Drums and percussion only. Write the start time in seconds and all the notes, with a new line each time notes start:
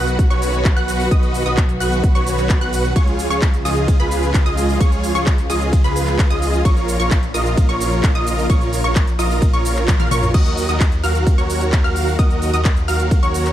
0.07 closed hi-hat, shaker
0.19 kick, closed hi-hat, shaker
0.30 closed hi-hat, shaker
0.42 open hi-hat, shaker
0.54 closed hi-hat, shaker
0.65 kick, clap, closed hi-hat, shaker
0.77 closed hi-hat, shaker
0.88 open hi-hat, shaker
1.00 open hi-hat, shaker
1.11 kick, closed hi-hat, shaker
1.23 closed hi-hat, shaker
1.34 open hi-hat, shaker
1.46 closed hi-hat, shaker
1.57 kick, clap, closed hi-hat, shaker
1.69 closed hi-hat, shaker
1.80 open hi-hat, shaker
1.92 closed hi-hat, shaker
2.03 kick, closed hi-hat, shaker
2.15 closed hi-hat, shaker
2.27 open hi-hat, shaker
2.38 clap, closed hi-hat, shaker
2.49 kick, clap, closed hi-hat, shaker
2.61 closed hi-hat, shaker
2.73 open hi-hat, shaker
2.84 closed hi-hat, shaker
2.96 kick, closed hi-hat, ride, shaker
3.07 closed hi-hat, shaker
3.19 open hi-hat, shaker
3.31 closed hi-hat, shaker
3.42 kick, clap, closed hi-hat, ride, shaker
3.54 closed hi-hat, shaker
3.65 open hi-hat, shaker
3.77 closed hi-hat, shaker
3.88 kick, closed hi-hat, ride, shaker
4.00 closed hi-hat, shaker
4.11 open hi-hat, shaker
4.23 closed hi-hat, shaker
4.34 kick, clap, closed hi-hat, ride, shaker
4.46 closed hi-hat, shaker
4.57 open hi-hat, shaker
4.69 open hi-hat, shaker
4.80 kick, closed hi-hat, ride, shaker
4.92 closed hi-hat, shaker
5.04 open hi-hat, shaker
5.15 closed hi-hat, shaker
5.26 kick, clap, closed hi-hat, ride, shaker
5.38 closed hi-hat, shaker
5.50 open hi-hat, shaker
5.61 closed hi-hat, shaker
5.73 kick, closed hi-hat, ride, shaker
5.84 closed hi-hat, shaker
5.96 open hi-hat, shaker
6.07 clap, closed hi-hat, shaker
6.19 kick, clap, closed hi-hat, ride, shaker
6.31 closed hi-hat, shaker
6.42 open hi-hat, shaker
6.54 closed hi-hat, shaker
6.65 kick, closed hi-hat, ride, shaker
6.77 closed hi-hat, shaker
6.88 open hi-hat, shaker
7.00 closed hi-hat, shaker
7.11 kick, clap, closed hi-hat, ride, shaker
7.23 closed hi-hat, shaker
7.34 open hi-hat, shaker
7.46 closed hi-hat, shaker
7.57 kick, closed hi-hat, ride, shaker
7.69 closed hi-hat, shaker
7.80 open hi-hat, shaker
7.92 closed hi-hat, shaker
8.03 kick, clap, closed hi-hat, ride, shaker
8.15 closed hi-hat, shaker
8.27 open hi-hat, shaker
8.38 open hi-hat, shaker
8.50 kick, closed hi-hat, ride, shaker
8.61 closed hi-hat, shaker
8.73 open hi-hat, shaker
8.85 shaker
8.96 kick, clap, closed hi-hat, ride, shaker
9.07 closed hi-hat, shaker
9.19 open hi-hat, shaker
9.30 open hi-hat, shaker
9.42 kick, closed hi-hat, ride, shaker
9.53 closed hi-hat, shaker
9.65 open hi-hat, shaker
9.76 clap, closed hi-hat, shaker
9.88 kick, clap, closed hi-hat, high tom, ride, shaker
10.00 closed hi-hat, high tom, shaker
10.11 open hi-hat, mid tom, shaker
10.23 closed hi-hat, mid tom, shaker
10.34 kick, closed hi-hat, crash, ride, shaker
10.46 closed hi-hat, shaker
10.57 open hi-hat, shaker
10.69 closed hi-hat, shaker
10.80 kick, clap, closed hi-hat, ride, shaker
10.92 closed hi-hat, shaker
11.04 open hi-hat, shaker
11.15 closed hi-hat, shaker
11.27 kick, closed hi-hat, ride, shaker
11.38 closed hi-hat, shaker
11.50 open hi-hat, shaker
11.61 closed hi-hat, shaker
11.72 kick, clap, closed hi-hat, ride, shaker
11.85 shaker
11.96 open hi-hat, shaker
12.07 open hi-hat, shaker
12.19 kick, closed hi-hat, ride, shaker
12.30 closed hi-hat, shaker
12.42 open hi-hat, shaker
12.54 closed hi-hat, shaker
12.65 kick, clap, closed hi-hat, ride, shaker
12.77 closed hi-hat, shaker
12.88 open hi-hat, shaker
13.00 closed hi-hat, shaker
13.11 kick, closed hi-hat, ride, shaker
13.23 closed hi-hat, shaker
13.34 open hi-hat, shaker
13.46 clap, closed hi-hat, shaker